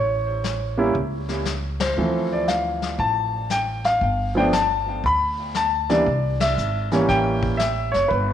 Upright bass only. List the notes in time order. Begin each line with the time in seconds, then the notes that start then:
Already playing: A1
0.95 C#2
1.97 D2
2.98 A1
4.01 G1
5.04 D2
6.07 C2
6.58 G#1
7.09 A1
7.94 F#1
8.11 G1